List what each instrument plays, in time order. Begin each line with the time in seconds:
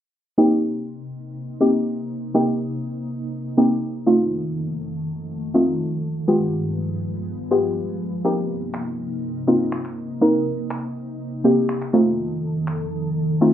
0.38 ambient pad C3 A#3 D#4, synth pluck A#3 C4 D#4 G4
1.60 synth pluck A#3 C4 D#4 G4
2.34 synth pluck A#3 C4 D#4 G4
3.57 synth pluck A#3 C4 D#4 G4
4.06 ambient pad F2 D#3 A3, synth pluck A3 C4 D#4 F4
5.54 synth pluck A3 C4 D#4 F4
6.28 ambient pad G2 F3 G#3 B3, synth pluck G#3 B3 F4 G4
7.51 synth pluck G#3 B3 F4 G4
8.25 ambient pad C3 A#3 D#4, synth pluck A#3 C4 D#4 G4
8.74 finger snap
9.47 synth pluck A#3 C4 D#4 F4
9.72 finger snap
9.85 finger snap
10.21 synth pluck A#3 C4 D#4 A#4
10.70 finger snap
11.44 synth pluck A#3 C4 D#4 G4
11.69 finger snap
11.82 finger snap
11.93 ambient pad F2 D#3 A4, synth pluck A3 C4 D#4 F4
12.67 finger snap
13.41 synth pluck A3 C4 D#4 F4